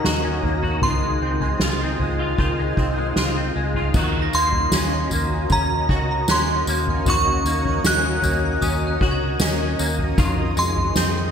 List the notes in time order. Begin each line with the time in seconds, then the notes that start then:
Already playing: D#3 A#3 C#4 D#4 F#4 A#4 D#5 A#5
0.04 D#2 F#4, snare
0.24 C#4
0.43 D#2 A#3, floor tom
0.62 F#4, floor tom
0.82 C#2 D#3 F4 C5 C6, floor tom
1.02 G#3
1.21 C#2 C4
1.40 G#3, floor tom
1.60 C#2 F4, snare
1.81 C4
1.99 C#2 G#3, floor tom
2.19 F4
2.38 C#2 D#3 F4, kick, floor tom
2.58 G#3
2.77 C2 C4, kick
2.97 G#3
3.16 C#2 F4, snare
3.37 C4
3.56 C#2 G#3
3.74 F4, floor tom
3.94 D#2 D#3 C#4 F#4 A#4 D#5 F#6, kick, floor tom, crash, tambourine
4.22 A#6
4.33 D#2 A#3 C6, tambourine
4.47 C7
4.52 floor tom
4.72 D#2 C#4, snare, tambourine
5.11 D#2 A#3, floor tom, tambourine
5.50 D#2 C#4 A#5, kick, floor tom, tambourine
5.89 C#2 F#4, kick
6.28 D#2 C#4 C6 F#6, snare, tambourine
6.67 D#2 A#3, tambourine
6.87 floor tom
7.05 D#2 D#3 F#4, floor tom, tambourine
7.10 C#6
7.45 D#2 A#3, tambourine
7.65 floor tom
7.84 D#2 C#4 F#6, snare, tambourine
8.22 D#2 A#3, floor tom, tambourine
8.61 D#2 C#4 D#6, floor tom, tambourine
8.87 F#6
9.01 C#2 F#4, kick
9.11 G#6
9.40 D#2 C#4, snare, tambourine
9.79 D#2 A#3, tambourine
9.99 floor tom
10.18 F2 D#3 C4 F4 G#4, kick, floor tom, tambourine
10.57 F2 G#3 C6, tambourine
10.76 floor tom
10.96 F2 C4, snare, tambourine